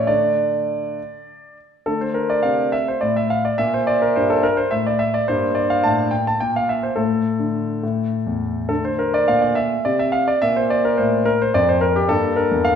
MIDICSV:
0, 0, Header, 1, 2, 480
1, 0, Start_track
1, 0, Key_signature, -1, "minor"
1, 0, Tempo, 589971
1, 70, Time_signature, 6, 3, 24, 8
1, 1990, Tempo, 568182
1, 10698, End_track
2, 0, Start_track
2, 0, Title_t, "Grand piano"
2, 0, Program_c, 0, 0
2, 0, Control_c, 0, 64, 127
2, 0, Note_on_c, 0, 45, 52
2, 0, Note_on_c, 0, 52, 35
2, 0, Note_on_c, 0, 57, 37
2, 0, Note_on_c, 0, 61, 38
2, 0, Note_on_c, 0, 73, 64
2, 0, Note_on_c, 0, 74, 68
2, 0, Note_on_c, 0, 76, 60
2, 59, Note_off_c, 0, 74, 0
2, 59, Note_on_c, 0, 74, 62
2, 68, Note_off_c, 0, 57, 0
2, 68, Note_on_c, 0, 57, 33
2, 70, Note_on_c, 0, 50, 39
2, 71, Note_on_c, 0, 62, 32
2, 78, Control_c, 0, 64, 0
2, 82, Note_off_c, 0, 52, 0
2, 82, Note_off_c, 0, 76, 0
2, 84, Note_off_c, 0, 73, 0
2, 85, Note_off_c, 0, 45, 0
2, 87, Note_off_c, 0, 61, 0
2, 237, Control_c, 0, 64, 127
2, 576, Note_off_c, 0, 50, 0
2, 647, Note_off_c, 0, 57, 0
2, 649, Note_off_c, 0, 62, 0
2, 803, Control_c, 0, 64, 0
2, 1273, Note_off_c, 0, 74, 0
2, 1514, Note_on_c, 0, 69, 58
2, 1522, Note_on_c, 0, 50, 38
2, 1524, Note_on_c, 0, 57, 27
2, 1635, Note_off_c, 0, 69, 0
2, 1636, Note_on_c, 0, 72, 47
2, 1665, Control_c, 0, 64, 127
2, 1743, Note_on_c, 0, 70, 53
2, 1755, Note_off_c, 0, 72, 0
2, 1867, Note_off_c, 0, 70, 0
2, 1868, Note_on_c, 0, 74, 57
2, 1897, Note_off_c, 0, 50, 0
2, 1974, Note_on_c, 0, 77, 59
2, 1983, Note_on_c, 0, 48, 37
2, 1987, Note_off_c, 0, 74, 0
2, 2223, Note_off_c, 0, 77, 0
2, 2223, Note_on_c, 0, 76, 63
2, 2243, Control_c, 0, 64, 0
2, 2348, Note_off_c, 0, 76, 0
2, 2359, Note_on_c, 0, 72, 54
2, 2371, Note_off_c, 0, 48, 0
2, 2465, Note_on_c, 0, 74, 60
2, 2475, Note_off_c, 0, 72, 0
2, 2478, Note_on_c, 0, 45, 39
2, 2588, Note_off_c, 0, 74, 0
2, 2597, Note_on_c, 0, 76, 61
2, 2713, Note_on_c, 0, 77, 62
2, 2714, Note_off_c, 0, 76, 0
2, 2831, Note_off_c, 0, 77, 0
2, 2837, Note_on_c, 0, 74, 57
2, 2858, Note_off_c, 0, 45, 0
2, 2919, Note_off_c, 0, 57, 0
2, 2948, Note_on_c, 0, 76, 74
2, 2953, Note_off_c, 0, 74, 0
2, 2958, Note_on_c, 0, 46, 46
2, 2958, Note_on_c, 0, 58, 30
2, 3069, Note_off_c, 0, 76, 0
2, 3082, Note_on_c, 0, 72, 56
2, 3095, Control_c, 0, 64, 127
2, 3192, Note_on_c, 0, 74, 68
2, 3196, Note_off_c, 0, 72, 0
2, 3312, Note_off_c, 0, 74, 0
2, 3318, Note_on_c, 0, 70, 60
2, 3339, Note_off_c, 0, 46, 0
2, 3434, Note_off_c, 0, 70, 0
2, 3436, Note_on_c, 0, 72, 64
2, 3445, Note_on_c, 0, 43, 44
2, 3554, Note_off_c, 0, 72, 0
2, 3555, Note_on_c, 0, 69, 63
2, 3668, Note_on_c, 0, 70, 72
2, 3672, Note_off_c, 0, 69, 0
2, 3682, Control_c, 0, 64, 0
2, 3784, Note_on_c, 0, 72, 62
2, 3787, Note_off_c, 0, 70, 0
2, 3819, Note_off_c, 0, 43, 0
2, 3900, Note_on_c, 0, 76, 66
2, 3904, Note_off_c, 0, 72, 0
2, 3911, Note_on_c, 0, 45, 44
2, 4020, Note_off_c, 0, 76, 0
2, 4034, Note_on_c, 0, 74, 59
2, 4139, Note_on_c, 0, 76, 69
2, 4145, Note_off_c, 0, 74, 0
2, 4256, Note_off_c, 0, 76, 0
2, 4266, Note_on_c, 0, 74, 62
2, 4284, Note_off_c, 0, 45, 0
2, 4345, Note_off_c, 0, 58, 0
2, 4379, Note_off_c, 0, 74, 0
2, 4384, Note_on_c, 0, 72, 71
2, 4395, Note_on_c, 0, 43, 50
2, 4395, Note_on_c, 0, 58, 35
2, 4516, Control_c, 0, 64, 127
2, 4610, Note_on_c, 0, 74, 57
2, 4617, Note_off_c, 0, 72, 0
2, 4731, Note_off_c, 0, 74, 0
2, 4740, Note_on_c, 0, 77, 66
2, 4769, Note_off_c, 0, 43, 0
2, 4854, Note_on_c, 0, 81, 69
2, 4856, Note_off_c, 0, 77, 0
2, 4861, Note_on_c, 0, 45, 44
2, 5085, Note_on_c, 0, 79, 59
2, 5093, Note_off_c, 0, 81, 0
2, 5101, Control_c, 0, 64, 0
2, 5209, Note_off_c, 0, 79, 0
2, 5223, Note_on_c, 0, 81, 62
2, 5242, Note_off_c, 0, 45, 0
2, 5334, Note_on_c, 0, 79, 62
2, 5338, Note_off_c, 0, 81, 0
2, 5346, Note_on_c, 0, 46, 40
2, 5453, Note_off_c, 0, 79, 0
2, 5468, Note_on_c, 0, 77, 59
2, 5576, Note_on_c, 0, 76, 60
2, 5581, Note_off_c, 0, 77, 0
2, 5695, Note_off_c, 0, 76, 0
2, 5695, Note_on_c, 0, 72, 52
2, 5726, Note_off_c, 0, 46, 0
2, 5791, Note_off_c, 0, 58, 0
2, 5801, Note_on_c, 0, 69, 53
2, 5810, Note_on_c, 0, 45, 38
2, 5812, Note_on_c, 0, 57, 26
2, 5815, Note_off_c, 0, 72, 0
2, 6001, Control_c, 0, 64, 127
2, 6100, Note_off_c, 0, 45, 0
2, 6170, Note_on_c, 0, 50, 37
2, 6460, Note_off_c, 0, 50, 0
2, 6499, Note_off_c, 0, 57, 0
2, 6539, Note_on_c, 0, 45, 35
2, 6541, Note_on_c, 0, 57, 28
2, 6544, Control_c, 0, 64, 0
2, 6699, Control_c, 0, 64, 127
2, 6832, Note_off_c, 0, 45, 0
2, 6905, Note_on_c, 0, 40, 33
2, 7019, Note_off_c, 0, 69, 0
2, 7200, Note_off_c, 0, 40, 0
2, 7242, Note_off_c, 0, 57, 0
2, 7262, Note_on_c, 0, 69, 65
2, 7272, Note_on_c, 0, 50, 41
2, 7272, Note_on_c, 0, 57, 29
2, 7283, Control_c, 0, 64, 0
2, 7389, Note_off_c, 0, 69, 0
2, 7398, Note_on_c, 0, 72, 55
2, 7449, Control_c, 0, 64, 127
2, 7516, Note_on_c, 0, 70, 58
2, 7518, Note_off_c, 0, 72, 0
2, 7637, Note_off_c, 0, 70, 0
2, 7645, Note_on_c, 0, 74, 63
2, 7660, Note_off_c, 0, 50, 0
2, 7761, Note_off_c, 0, 74, 0
2, 7762, Note_on_c, 0, 77, 65
2, 7772, Note_on_c, 0, 46, 38
2, 7880, Note_off_c, 0, 77, 0
2, 7880, Note_on_c, 0, 74, 59
2, 7994, Note_on_c, 0, 76, 64
2, 7999, Note_off_c, 0, 74, 0
2, 8003, Control_c, 0, 64, 0
2, 8151, Note_off_c, 0, 46, 0
2, 8237, Note_off_c, 0, 76, 0
2, 8244, Note_on_c, 0, 74, 62
2, 8249, Note_on_c, 0, 48, 42
2, 8363, Note_off_c, 0, 74, 0
2, 8366, Note_on_c, 0, 76, 61
2, 8474, Note_on_c, 0, 77, 67
2, 8485, Note_off_c, 0, 76, 0
2, 8600, Note_off_c, 0, 77, 0
2, 8605, Note_on_c, 0, 74, 59
2, 8635, Note_off_c, 0, 48, 0
2, 8693, Note_off_c, 0, 57, 0
2, 8723, Note_on_c, 0, 76, 75
2, 8727, Note_off_c, 0, 74, 0
2, 8729, Note_on_c, 0, 46, 44
2, 8734, Note_on_c, 0, 58, 32
2, 8847, Note_off_c, 0, 76, 0
2, 8849, Note_on_c, 0, 72, 59
2, 8918, Control_c, 0, 64, 127
2, 8966, Note_on_c, 0, 74, 64
2, 8970, Note_off_c, 0, 72, 0
2, 9088, Note_off_c, 0, 74, 0
2, 9088, Note_on_c, 0, 70, 60
2, 9115, Note_off_c, 0, 46, 0
2, 9195, Note_on_c, 0, 72, 63
2, 9206, Note_on_c, 0, 45, 42
2, 9209, Note_off_c, 0, 70, 0
2, 9431, Note_on_c, 0, 70, 74
2, 9442, Note_off_c, 0, 72, 0
2, 9455, Control_c, 0, 64, 0
2, 9559, Note_off_c, 0, 70, 0
2, 9569, Note_on_c, 0, 72, 66
2, 9587, Note_off_c, 0, 45, 0
2, 9675, Note_on_c, 0, 74, 74
2, 9679, Note_on_c, 0, 41, 47
2, 9685, Note_off_c, 0, 72, 0
2, 9797, Note_off_c, 0, 74, 0
2, 9797, Note_on_c, 0, 72, 66
2, 9901, Note_on_c, 0, 70, 71
2, 9916, Note_off_c, 0, 72, 0
2, 10026, Note_on_c, 0, 67, 63
2, 10027, Note_off_c, 0, 70, 0
2, 10057, Note_off_c, 0, 41, 0
2, 10124, Note_off_c, 0, 58, 0
2, 10135, Note_on_c, 0, 69, 74
2, 10143, Note_on_c, 0, 43, 51
2, 10147, Note_on_c, 0, 58, 35
2, 10149, Note_off_c, 0, 67, 0
2, 10305, Control_c, 0, 64, 127
2, 10368, Note_on_c, 0, 70, 60
2, 10382, Note_off_c, 0, 69, 0
2, 10433, Note_off_c, 0, 43, 0
2, 10496, Note_on_c, 0, 40, 46
2, 10607, Note_on_c, 0, 77, 76
2, 10619, Note_off_c, 0, 70, 0
2, 10698, Note_off_c, 0, 40, 0
2, 10698, Note_off_c, 0, 58, 0
2, 10698, Note_off_c, 0, 77, 0
2, 10698, End_track
0, 0, End_of_file